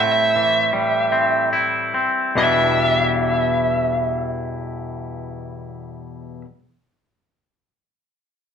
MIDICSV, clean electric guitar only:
0, 0, Header, 1, 2, 480
1, 0, Start_track
1, 0, Key_signature, 1, "minor"
1, 0, Tempo, 776197
1, 945, Tempo, 839161
1, 1425, Time_signature, 6, 3, 24, 8
1, 1425, Tempo, 865801
1, 4850, End_track
2, 0, Start_track
2, 0, Title_t, "Clean electric guitar"
2, 0, Program_c, 0, 27
2, 0, Note_on_c, 0, 45, 39
2, 0, Note_on_c, 0, 52, 36
2, 0, Note_on_c, 0, 55, 37
2, 0, Note_on_c, 0, 60, 36
2, 0, Note_on_c, 0, 64, 39
2, 218, Note_off_c, 0, 55, 0
2, 221, Note_off_c, 0, 52, 0
2, 223, Note_on_c, 0, 52, 32
2, 451, Note_on_c, 0, 55, 35
2, 685, Note_off_c, 0, 60, 0
2, 692, Note_on_c, 0, 60, 32
2, 700, Note_off_c, 0, 64, 0
2, 945, Note_on_c, 0, 64, 31
2, 1175, Note_off_c, 0, 60, 0
2, 1181, Note_off_c, 0, 45, 0
2, 1182, Note_on_c, 0, 60, 31
2, 1418, Note_on_c, 0, 40, 50
2, 1419, Note_off_c, 0, 52, 0
2, 1421, Note_on_c, 0, 47, 51
2, 1424, Note_off_c, 0, 55, 0
2, 1425, Note_off_c, 0, 60, 0
2, 1425, Note_off_c, 0, 64, 0
2, 1426, Note_on_c, 0, 52, 47
2, 1432, Note_on_c, 0, 55, 46
2, 1432, Note_on_c, 0, 62, 47
2, 1438, Note_on_c, 0, 64, 50
2, 3678, Note_off_c, 0, 40, 0
2, 3681, Note_off_c, 0, 47, 0
2, 3686, Note_off_c, 0, 52, 0
2, 3692, Note_off_c, 0, 55, 0
2, 3692, Note_off_c, 0, 62, 0
2, 3698, Note_off_c, 0, 64, 0
2, 4850, End_track
0, 0, End_of_file